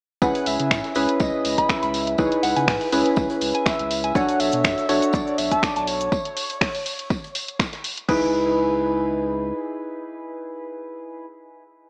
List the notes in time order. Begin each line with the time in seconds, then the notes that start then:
0.22 C#2 C#4 E4 G#4 B4 F#5, kick, tambourine
0.35 closed hi-hat
0.46 C#2 E5, open hi-hat, tambourine
0.60 C#3, closed hi-hat
0.71 G#2, finger snap, kick, snare, tambourine
0.84 snare, closed hi-hat
0.95 C#2 C#4 E4 G#4 B4, open hi-hat, tambourine
1.09 closed hi-hat
1.20 C#2 D#5, kick, tambourine
1.45 C#2, open hi-hat, tambourine
1.58 B5, kick, closed hi-hat
1.69 E5, finger snap, kick, snare, tambourine
1.82 C#2 B5, closed hi-hat
1.94 snare, open hi-hat, tambourine
2.07 closed hi-hat
2.18 C#2 D#4 E4 G#4 B4 C#5, kick, tambourine
2.32 closed hi-hat
2.43 C#2 B4 F#5, open hi-hat, tambourine
2.56 C#3 G#5, closed hi-hat
2.68 G#2, finger snap, kick, snare, open hi-hat
2.81 open hi-hat
2.92 C#2 C#4 E4 G#4 B4, open hi-hat, tambourine
3.06 closed hi-hat
3.16 C#2, kick, tambourine
3.30 closed hi-hat
3.41 C#2, open hi-hat, tambourine
3.55 G#5, closed hi-hat
3.66 E5, finger snap, kick, snare, tambourine
3.79 C#2, closed hi-hat
3.91 open hi-hat, tambourine
4.04 G#5, closed hi-hat
4.15 B1 D4 F#4 A4 C#5 F#5, kick, tambourine, cabasa
4.29 closed hi-hat, cabasa
4.40 B1 E5, open hi-hat, tambourine
4.52 B2, closed hi-hat, cabasa
4.64 F#2, finger snap, kick, snare, tambourine, cabasa
4.78 snare, closed hi-hat, cabasa
4.89 B1 D4 F#4 A4 C#5, open hi-hat, tambourine
5.02 closed hi-hat, cabasa
5.13 B1 D5, kick, tambourine, cabasa
5.27 cabasa
5.38 B1 E5, open hi-hat, tambourine
5.51 A5, kick, closed hi-hat, cabasa
5.62 D5, finger snap, kick, snare, tambourine, cabasa
5.76 B1 A5, closed hi-hat, cabasa
5.87 C#5, snare, open hi-hat, tambourine
6.00 closed hi-hat, cabasa
6.12 kick, tambourine
6.25 closed hi-hat
6.37 open hi-hat, tambourine
6.50 closed hi-hat
6.61 finger snap, kick, snare, open hi-hat
6.75 open hi-hat
6.86 open hi-hat, tambourine
6.99 closed hi-hat
7.10 kick, tambourine
7.24 closed hi-hat
7.35 open hi-hat, tambourine
7.48 closed hi-hat
7.59 finger snap, kick, snare, tambourine
7.73 snare, closed hi-hat
7.84 open hi-hat, tambourine
7.97 closed hi-hat
8.08 C#2 D#4 E4 G#4 B4, kick, crash